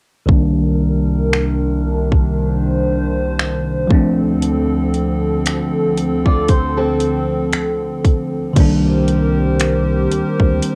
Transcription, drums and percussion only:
0, 0, Header, 1, 2, 480
1, 0, Start_track
1, 0, Tempo, 1034483
1, 132, Time_signature, 4, 2, 24, 8
1, 4988, End_track
2, 0, Start_track
2, 0, Title_t, "Drums"
2, 133, Note_on_c, 9, 36, 100
2, 179, Note_off_c, 9, 36, 0
2, 618, Note_on_c, 9, 26, 117
2, 664, Note_off_c, 9, 26, 0
2, 983, Note_on_c, 9, 36, 74
2, 1030, Note_off_c, 9, 36, 0
2, 1575, Note_on_c, 9, 26, 104
2, 1621, Note_off_c, 9, 26, 0
2, 1812, Note_on_c, 9, 36, 101
2, 1858, Note_off_c, 9, 36, 0
2, 2052, Note_on_c, 9, 42, 70
2, 2099, Note_off_c, 9, 42, 0
2, 2292, Note_on_c, 9, 42, 54
2, 2338, Note_off_c, 9, 42, 0
2, 2532, Note_on_c, 9, 42, 77
2, 2537, Note_on_c, 9, 26, 115
2, 2578, Note_off_c, 9, 42, 0
2, 2584, Note_off_c, 9, 26, 0
2, 2772, Note_on_c, 9, 42, 68
2, 2819, Note_off_c, 9, 42, 0
2, 2903, Note_on_c, 9, 36, 73
2, 2950, Note_off_c, 9, 36, 0
2, 3009, Note_on_c, 9, 42, 64
2, 3011, Note_on_c, 9, 36, 86
2, 3055, Note_off_c, 9, 42, 0
2, 3057, Note_off_c, 9, 36, 0
2, 3249, Note_on_c, 9, 42, 65
2, 3295, Note_off_c, 9, 42, 0
2, 3492, Note_on_c, 9, 42, 58
2, 3495, Note_on_c, 9, 26, 104
2, 3538, Note_off_c, 9, 42, 0
2, 3542, Note_off_c, 9, 26, 0
2, 3733, Note_on_c, 9, 36, 89
2, 3734, Note_on_c, 9, 42, 59
2, 3780, Note_off_c, 9, 36, 0
2, 3780, Note_off_c, 9, 42, 0
2, 3973, Note_on_c, 9, 36, 106
2, 3973, Note_on_c, 9, 42, 74
2, 3973, Note_on_c, 9, 49, 89
2, 4019, Note_off_c, 9, 49, 0
2, 4020, Note_off_c, 9, 36, 0
2, 4020, Note_off_c, 9, 42, 0
2, 4213, Note_on_c, 9, 42, 58
2, 4259, Note_off_c, 9, 42, 0
2, 4453, Note_on_c, 9, 42, 76
2, 4458, Note_on_c, 9, 26, 121
2, 4499, Note_off_c, 9, 42, 0
2, 4504, Note_off_c, 9, 26, 0
2, 4693, Note_on_c, 9, 42, 75
2, 4740, Note_off_c, 9, 42, 0
2, 4824, Note_on_c, 9, 36, 83
2, 4871, Note_off_c, 9, 36, 0
2, 4930, Note_on_c, 9, 42, 65
2, 4976, Note_off_c, 9, 42, 0
2, 4988, End_track
0, 0, End_of_file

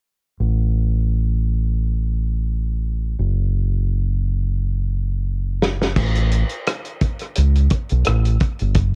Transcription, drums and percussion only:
0, 0, Header, 1, 2, 480
1, 0, Start_track
1, 0, Tempo, 697674
1, 263, Time_signature, 4, 2, 24, 8
1, 6158, End_track
2, 0, Start_track
2, 0, Title_t, "Drums"
2, 3869, Note_on_c, 9, 38, 82
2, 3938, Note_off_c, 9, 38, 0
2, 4002, Note_on_c, 9, 38, 67
2, 4070, Note_off_c, 9, 38, 0
2, 4102, Note_on_c, 9, 36, 99
2, 4102, Note_on_c, 9, 49, 76
2, 4170, Note_off_c, 9, 49, 0
2, 4171, Note_off_c, 9, 36, 0
2, 4233, Note_on_c, 9, 42, 41
2, 4301, Note_off_c, 9, 42, 0
2, 4344, Note_on_c, 9, 42, 62
2, 4413, Note_off_c, 9, 42, 0
2, 4466, Note_on_c, 9, 42, 46
2, 4535, Note_off_c, 9, 42, 0
2, 4585, Note_on_c, 9, 42, 70
2, 4591, Note_on_c, 9, 37, 101
2, 4654, Note_off_c, 9, 42, 0
2, 4660, Note_off_c, 9, 37, 0
2, 4710, Note_on_c, 9, 42, 36
2, 4779, Note_off_c, 9, 42, 0
2, 4821, Note_on_c, 9, 42, 53
2, 4824, Note_on_c, 9, 36, 79
2, 4890, Note_off_c, 9, 42, 0
2, 4893, Note_off_c, 9, 36, 0
2, 4947, Note_on_c, 9, 42, 39
2, 4964, Note_on_c, 9, 37, 30
2, 5015, Note_off_c, 9, 42, 0
2, 5033, Note_off_c, 9, 37, 0
2, 5059, Note_on_c, 9, 42, 77
2, 5128, Note_off_c, 9, 42, 0
2, 5197, Note_on_c, 9, 42, 40
2, 5266, Note_off_c, 9, 42, 0
2, 5298, Note_on_c, 9, 42, 55
2, 5304, Note_on_c, 9, 36, 80
2, 5367, Note_off_c, 9, 42, 0
2, 5373, Note_off_c, 9, 36, 0
2, 5429, Note_on_c, 9, 42, 39
2, 5498, Note_off_c, 9, 42, 0
2, 5536, Note_on_c, 9, 42, 62
2, 5551, Note_on_c, 9, 37, 95
2, 5604, Note_off_c, 9, 42, 0
2, 5620, Note_off_c, 9, 37, 0
2, 5677, Note_on_c, 9, 42, 44
2, 5745, Note_off_c, 9, 42, 0
2, 5780, Note_on_c, 9, 42, 48
2, 5786, Note_on_c, 9, 36, 85
2, 5787, Note_on_c, 9, 37, 30
2, 5849, Note_off_c, 9, 42, 0
2, 5854, Note_off_c, 9, 36, 0
2, 5856, Note_off_c, 9, 37, 0
2, 5911, Note_on_c, 9, 42, 35
2, 5979, Note_off_c, 9, 42, 0
2, 6017, Note_on_c, 9, 42, 77
2, 6023, Note_on_c, 9, 36, 101
2, 6086, Note_off_c, 9, 42, 0
2, 6091, Note_off_c, 9, 36, 0
2, 6158, End_track
0, 0, End_of_file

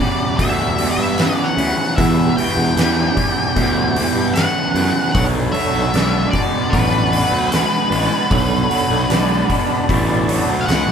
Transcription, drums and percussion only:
0, 0, Header, 1, 2, 480
1, 0, Start_track
1, 0, Key_signature, 2, "minor"
1, 0, Tempo, 791557
1, 1196, Time_signature, 4, 2, 24, 8
1, 6621, End_track
2, 0, Start_track
2, 0, Title_t, "Drums"
2, 237, Note_on_c, 9, 36, 75
2, 237, Note_on_c, 9, 46, 67
2, 297, Note_off_c, 9, 36, 0
2, 298, Note_off_c, 9, 46, 0
2, 476, Note_on_c, 9, 46, 52
2, 536, Note_off_c, 9, 46, 0
2, 715, Note_on_c, 9, 46, 72
2, 726, Note_on_c, 9, 38, 106
2, 775, Note_off_c, 9, 46, 0
2, 786, Note_off_c, 9, 38, 0
2, 960, Note_on_c, 9, 46, 57
2, 1021, Note_off_c, 9, 46, 0
2, 1201, Note_on_c, 9, 36, 105
2, 1202, Note_on_c, 9, 46, 75
2, 1262, Note_off_c, 9, 36, 0
2, 1263, Note_off_c, 9, 46, 0
2, 1445, Note_on_c, 9, 46, 56
2, 1505, Note_off_c, 9, 46, 0
2, 1682, Note_on_c, 9, 46, 65
2, 1693, Note_on_c, 9, 38, 100
2, 1742, Note_off_c, 9, 46, 0
2, 1753, Note_off_c, 9, 38, 0
2, 1922, Note_on_c, 9, 36, 80
2, 1923, Note_on_c, 9, 46, 58
2, 1983, Note_off_c, 9, 36, 0
2, 1984, Note_off_c, 9, 46, 0
2, 2161, Note_on_c, 9, 46, 77
2, 2162, Note_on_c, 9, 36, 82
2, 2222, Note_off_c, 9, 36, 0
2, 2222, Note_off_c, 9, 46, 0
2, 2403, Note_on_c, 9, 46, 54
2, 2464, Note_off_c, 9, 46, 0
2, 2642, Note_on_c, 9, 46, 63
2, 2653, Note_on_c, 9, 38, 106
2, 2702, Note_off_c, 9, 46, 0
2, 2713, Note_off_c, 9, 38, 0
2, 2884, Note_on_c, 9, 46, 51
2, 2945, Note_off_c, 9, 46, 0
2, 3121, Note_on_c, 9, 46, 77
2, 3122, Note_on_c, 9, 36, 109
2, 3182, Note_off_c, 9, 36, 0
2, 3182, Note_off_c, 9, 46, 0
2, 3362, Note_on_c, 9, 46, 51
2, 3423, Note_off_c, 9, 46, 0
2, 3601, Note_on_c, 9, 46, 59
2, 3612, Note_on_c, 9, 38, 90
2, 3662, Note_off_c, 9, 46, 0
2, 3672, Note_off_c, 9, 38, 0
2, 3841, Note_on_c, 9, 46, 52
2, 3842, Note_on_c, 9, 36, 77
2, 3902, Note_off_c, 9, 36, 0
2, 3902, Note_off_c, 9, 46, 0
2, 4082, Note_on_c, 9, 36, 80
2, 4083, Note_on_c, 9, 46, 60
2, 4142, Note_off_c, 9, 36, 0
2, 4144, Note_off_c, 9, 46, 0
2, 4324, Note_on_c, 9, 46, 55
2, 4384, Note_off_c, 9, 46, 0
2, 4560, Note_on_c, 9, 46, 67
2, 4571, Note_on_c, 9, 38, 93
2, 4620, Note_off_c, 9, 46, 0
2, 4631, Note_off_c, 9, 38, 0
2, 4803, Note_on_c, 9, 46, 56
2, 4864, Note_off_c, 9, 46, 0
2, 5039, Note_on_c, 9, 46, 72
2, 5040, Note_on_c, 9, 36, 111
2, 5100, Note_off_c, 9, 46, 0
2, 5101, Note_off_c, 9, 36, 0
2, 5281, Note_on_c, 9, 46, 53
2, 5342, Note_off_c, 9, 46, 0
2, 5519, Note_on_c, 9, 46, 75
2, 5529, Note_on_c, 9, 38, 98
2, 5579, Note_off_c, 9, 46, 0
2, 5590, Note_off_c, 9, 38, 0
2, 5759, Note_on_c, 9, 36, 80
2, 5760, Note_on_c, 9, 46, 57
2, 5820, Note_off_c, 9, 36, 0
2, 5821, Note_off_c, 9, 46, 0
2, 5998, Note_on_c, 9, 36, 87
2, 6002, Note_on_c, 9, 46, 78
2, 6059, Note_off_c, 9, 36, 0
2, 6063, Note_off_c, 9, 46, 0
2, 6240, Note_on_c, 9, 46, 55
2, 6300, Note_off_c, 9, 46, 0
2, 6479, Note_on_c, 9, 46, 66
2, 6490, Note_on_c, 9, 38, 99
2, 6540, Note_off_c, 9, 46, 0
2, 6551, Note_off_c, 9, 38, 0
2, 6621, End_track
0, 0, End_of_file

